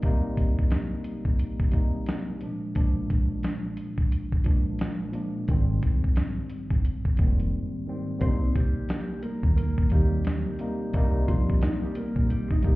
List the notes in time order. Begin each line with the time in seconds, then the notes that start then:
Already playing: C3 G3 A#3 D#4
0.02 C3 G3 A#3 D#4, kick, closed hi-hat
0.37 kick, closed hi-hat
0.59 kick
0.71 snare, closed hi-hat
1.04 closed hi-hat
1.25 kick
1.39 closed hi-hat
1.60 kick
1.71 C3 G3 A#3 D#4, kick, closed hi-hat
2.06 snare, closed hi-hat
2.41 A#2 F3 G#3 D4, closed hi-hat
2.74 A#2 F3 G#3 D4, kick, closed hi-hat
3.10 kick, closed hi-hat
3.43 snare, closed hi-hat
3.77 closed hi-hat
3.98 kick
4.12 closed hi-hat
4.32 kick
4.44 A#2 F3 G#3 D4, kick, closed hi-hat
4.79 snare, closed hi-hat
5.12 A#2 F3 G#3 D4, closed hi-hat
5.48 G#1 G#2 D#3 G3 C4, kick, closed hi-hat
5.83 kick, closed hi-hat
6.04 kick
6.16 snare, closed hi-hat
6.50 closed hi-hat
6.70 G1, kick
6.85 closed hi-hat
7.05 kick
7.17 F1 G#2 D#3 G3 A#3, kick, closed hi-hat
7.26 C4
7.40 closed hi-hat
7.86 G#2 D#3 G3 C4
8.18 C2 C3 G3 A#3 D4 C5, kick, closed hi-hat
8.22 C4
8.27 D#4
8.55 G3 G4, kick, closed hi-hat
8.89 snare, closed hi-hat
9.23 A#3 A#4, closed hi-hat
9.43 D#2, kick
9.57 A#3 A#4, closed hi-hat
9.78 kick
9.90 D#2 C3 G3 A#3 D#4 G4, kick, closed hi-hat
10.25 snare, closed hi-hat
10.59 C3 G3 A#3 D#4, closed hi-hat
10.94 C2 C3 G3 A#3 D#4, kick, closed hi-hat
11.28 F3 F4, kick, closed hi-hat
11.50 kick
11.61 D#4 D#5, snare, closed hi-hat
11.82 G3 G4
11.95 A#3 A#4, closed hi-hat
12.16 A#1, kick
12.29 G3 G4, closed hi-hat
12.51 D#4 D#5, kick
12.62 C2 C3 G3 A#3 D#4 G4, kick, closed hi-hat